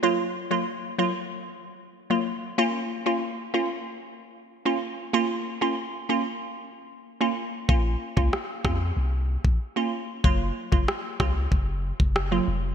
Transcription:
<<
  \new Staff \with { instrumentName = "Synth pluck" } { \time 4/4 \key des \major \tempo 4 = 94 <ges bes f'>8. <ges bes f'>16 r8 <ges bes f'>16 r4. <ges bes f'>16 r8 | <bes des' f'>8. <bes des' f'>16 r8 <bes des' f'>16 r4. <bes des' f'>16 r8 | <bes des' f'>8. <bes des' f'>16 r8 <bes des' f'>16 r4. <bes des' f'>16 r8 | <bes des' f'>8. <bes des' f'>16 r8 <bes des' f'>16 r4. <bes des' f'>16 r8 |
<ges bes f'>8. <ges bes f'>16 r8 <ges bes f'>16 r4. <ges bes f'>16 r8 | }
  \new Staff \with { instrumentName = "Sub bass" } { \clef bass \time 4/4 \key des \major r1 | r1 | r1 | bes,,8 r16 des,16 r8 f,8 c,8. bes,,16 r4 |
ges,,8 r16 ges,,16 r8 des,8 ges,,8. ges,,8. f,,8 | }
  \new DrumStaff \with { instrumentName = "Drums" } \drummode { \time 4/4 r4 r4 r4 r4 | r4 r4 r4 r4 | r4 r4 r4 r4 | bd8. bd16 ss8 <bd ss>8 r8. bd16 r4 |
bd8. bd16 ss8 <bd ss>8 bd8. bd16 ss4 | }
>>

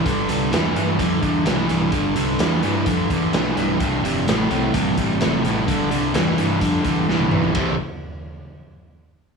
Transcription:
<<
  \new Staff \with { instrumentName = "Overdriven electric guitar" } { \clef bass \time 4/4 \key c \major \tempo 4 = 128 <g, d>8 <g, d>8 <g, e>8 <g, e>8 <g, d>8 <g, d>8 <g, e>8 <g, e>8 | <g, d>8 <g, d>8 <g, e>8 <g, e>8 <g, d>8 <g, d>8 <g, e>8 <g, e>8 | <c, g,>8 <c, g,>8 <c, a,>8 <c, a,>8 <c, g,>8 <c, g,>8 <c, a,>8 <c, a,>8 | <g, d>8 <g, d>8 <g, e>8 <g, e>8 <g, d>8 <g, d>8 <g, e>8 <g, e>8 |
<c, g, c>8 r2. r8 | }
  \new Staff \with { instrumentName = "Fingered electric bass" } { \clef bass \time 4/4 \key c \major g,,8 c,8 e,8 g,8 f,8 e,8 b,,8 b,,8 | g,,8 c,8 e,8 g,8 f,8 e,8 b,,8 b,,8 | c,,8 f,,8 a,,8 c,8 bes,,8 a,,8 e,,8 a,,8 | g,,8 c,8 e,8 g,8 f,8 e,8 b,,8 b,,8 |
c,,8 r2. r8 | }
  \new DrumStaff \with { instrumentName = "Drums" } \drummode { \time 4/4 <hh bd>8 hh8 <hh sn>8 hh8 <hh bd>8 <hh bd>8 <hh sn>8 hh8 | <hh bd>8 hh8 <hh sn>8 hh8 <hh bd>8 <hh bd>8 <hh sn>8 hh8 | <hh bd>8 hh8 <hh sn>8 hh8 <hh bd>8 <hh bd>8 <hh sn>8 hh8 | <hh bd>8 hh8 <hh sn>8 hh8 <hh bd>8 <hh bd>8 sn16 tommh16 toml16 tomfh16 |
<bd rb tomfh>4 r4 r4 r4 | }
>>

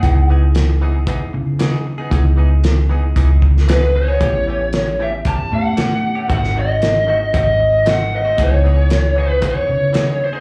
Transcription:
<<
  \new Staff \with { instrumentName = "Lead electric guitar" } { \time 4/4 \key cis \minor \tempo 4 = 115 fis''8 r2. r8 | r2. b'8 cis''8~ | cis''4. e''8 a''8 fis''4. | fis''8 dis''4. dis''4 fis''8 dis''8 |
cis''4. b'8 cis''4. bis'8 | }
  \new Staff \with { instrumentName = "Tine electric piano" } { \time 4/4 \key cis \minor <b dis' e' gis'>1 | <b dis' e' gis'>1 | <b cis' e' g'>2~ <b cis' e' g'>8 <b cis' e' g'>4. | <bis dis' fis' a'>1 |
<b dis' e' gis'>1 | }
  \new Staff \with { instrumentName = "Clean electric guitar" } { \time 4/4 \key cis \minor <e b dis' gis'>16 r16 <e b dis' gis'>16 r8. <e b dis' gis'>16 r16 <e b dis' gis'>16 r8. <e b dis' gis'>16 r8 <b dis' gis'>16 | <e b dis' gis'>16 r16 <e b dis' gis'>16 r8. <e b dis' gis'>16 r16 <e b dis' gis'>16 r8. <e b dis' gis'>16 r8 <b dis' gis'>16 | <e a cis' g'>16 r16 <e a cis' g'>16 r8. <e a cis' g'>16 r16 <e a cis' g'>16 r8. <e a cis' g'>16 r8 <a cis' g'>16 | <dis a bis fis'>16 r16 <dis a bis fis'>16 r8. <dis a bis fis'>16 r16 <dis a bis fis'>16 r8. <dis a bis fis'>16 r8 <a bis fis'>16 |
<e b dis' gis'>16 r16 <e b dis' gis'>16 r8. <e b dis' gis'>16 r16 <e b dis' gis'>16 r8. <e b dis' gis'>16 r8 <b dis' gis'>16 | }
  \new Staff \with { instrumentName = "Fingered electric bass" } { \clef bass \time 4/4 \key cis \minor cis,2 b,,8 cis4. | cis,2 cis,2 | a,,2 g,,8 a,4. | gis,,2 gis,,2 |
cis,2 b,,8 cis4. | }
  \new DrumStaff \with { instrumentName = "Drums" } \drummode { \time 4/4 <hh bd>4 <hh sn>4 <hh bd>4 <hh sn>4 | <hh bd>4 <hh sn>4 <hh bd>8 bd16 sn16 <hh sn>4 | <hh bd>4 <hh sn>4 <hh bd>4 <hh sn>4 | <hh bd>16 sn8. <hh sn>4 <hh bd>4 <hh sn>4 |
<hh bd>4 <hh sn>4 <hh bd>4 <hh sn>4 | }
>>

